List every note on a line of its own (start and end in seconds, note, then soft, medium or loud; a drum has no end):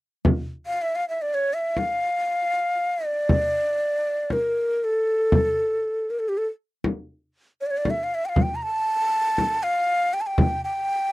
0.25 frame drum loud
0.66 0.83 F5 medium
0.82 0.97 E5 medium
0.95 1.08 F5 loud
1.09 1.23 E5 medium
1.22 1.36 D5 medium
1.34 1.55 C#5 medium
1.54 1.79 E5 medium
1.77 3.07 F5 medium
1.77 frame drum medium
3.05 4.34 D5 loud
3.29 frame drum medium
4.30 4.86 A#4 medium
4.30 frame drum medium
4.84 6.12 A4 medium
5.32 frame drum medium
6.10 6.21 A#4 medium
6.19 6.30 A4 medium
6.29 6.39 G4 medium
6.38 6.46 A4 medium
6.84 frame drum medium
7.61 7.68 C#5 medium
7.66 7.72 D5 medium
7.71 7.79 C#5 medium
7.77 7.92 D5 medium
7.85 frame drum medium
7.90 8.05 E5 medium
8.04 8.16 F5 medium
8.15 8.27 E5 medium
8.25 8.44 F5 medium
8.25 8.31 G5 medium
8.36 frame drum medium
8.42 8.57 G5 medium
8.55 8.64 A#5 medium
8.63 9.65 A5 loud
9.38 frame drum medium
9.63 10.15 F5 loud
10.14 10.22 G5 medium
10.21 10.28 A5 medium
10.27 10.63 G5 medium
10.38 frame drum medium
10.64 11.12 G5 loud